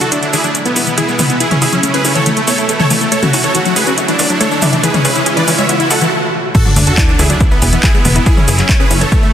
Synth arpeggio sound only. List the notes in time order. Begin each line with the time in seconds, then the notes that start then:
0.01 D4
0.12 E4
0.22 E3
0.33 E3
0.44 F#3
0.55 B3
0.65 E4
0.76 G#4
0.87 E3
0.98 E3
1.08 G#3
1.19 B3
1.30 E4
1.40 E4
1.51 E3
1.62 E3
1.73 F#3
1.83 A3
1.94 C#4
2.05 E4
2.15 E3
2.26 E3
2.37 A3
2.48 B3
2.58 E4
2.69 A4
2.80 E3
2.91 E3
3.01 A3
3.12 A3
3.23 C#4
3.34 E4
3.44 E3
3.55 E3
3.66 F#3
3.76 A3
3.87 C#4
3.98 E4
4.08 E3
4.19 E3
4.30 F#3
4.41 A3
4.51 D4
4.62 E4
4.73 E3
4.83 E3
4.94 G#3
5.05 C#4
5.16 E4
5.26 G#4
5.37 E3
5.48 E3
5.58 G#3
5.69 B3
5.80 E4
5.91 A4
6.01 E3
6.55 E3
6.66 F#3
6.76 A3
6.87 D4
6.98 E4
7.08 E3
7.19 E3
7.30 F#3
7.41 B3
7.51 E4
7.62 G#4
7.73 E3
7.83 E3
7.94 G#3
8.05 B3
8.16 E4
8.26 E4
8.37 E3
8.48 E3
8.58 F#3
8.69 A3
8.80 C#4
8.91 E4
9.01 E3
9.12 E3
9.23 A3